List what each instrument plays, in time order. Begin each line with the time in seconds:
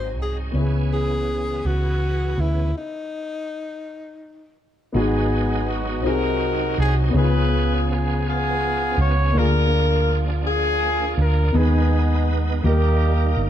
Already playing: fingered electric bass G#1, upright piano G#2 C4 D#4 F#4 G#4, tonewheel organ F#3 C4 D#4 G#4, tenor saxophone C5
0.17 fingered electric bass C2
0.22 tenor saxophone G#4
0.51 fingered electric bass C#2, upright piano C#3 B3 C#4, tonewheel organ E3 B3 G#4
0.55 tonewheel organ C#4, upright piano E4 G#4
0.93 tenor saxophone G#4
1.65 fingered electric bass C#2, tenor saxophone F#4
2.38 fingered electric bass D2, tenor saxophone E4
2.77 tenor saxophone D#4
4.92 fingered electric bass G#1, upright piano G#2 B3 D#4 F#4, tonewheel organ F#3 B3 D#4 G#4, horn section B3 D#4
4.97 upright piano G#4, horn section G#4
5.70 horn section F#4
6.02 fingered electric bass C2, upright piano C3 C4 D#4 F#4 G#4, tonewheel organ F#3 C4 D#4 G#4, horn section D#4 F#4 A#4
6.78 fingered electric bass C2, horn section G#4
7.09 upright piano C#3 B3 C#4
7.14 fingered electric bass C#2, tonewheel organ F3 B3 C#4 G#4, upright piano D#4 G#4, horn section F4 G#4 B4
7.21 upright piano F4
7.91 horn section G#4
8.27 horn section B3 F4 G#4
8.98 fingered electric bass C#2, horn section C#5
9.32 fingered electric bass D2, upright piano A#3 D4
9.36 upright piano D3 F4 G#4, tonewheel organ F3 A#3 D4 G#4, horn section F4 A#4
10.46 horn section F4 G#4
11.18 fingered electric bass D2, horn section A#4
11.52 fingered electric bass D#2, upright piano D#3 B3 D#4 G#4 B4, tonewheel organ G#3 B3 D#4 B4, horn section B3 D#4
11.57 horn section G#4
12.62 fingered electric bass D#2, upright piano D#3 A#3 D#4 G4 A#4, tonewheel organ G3 A#3 D#4 A#4, horn section A#3 D#4 G4
13.37 fingered electric bass G1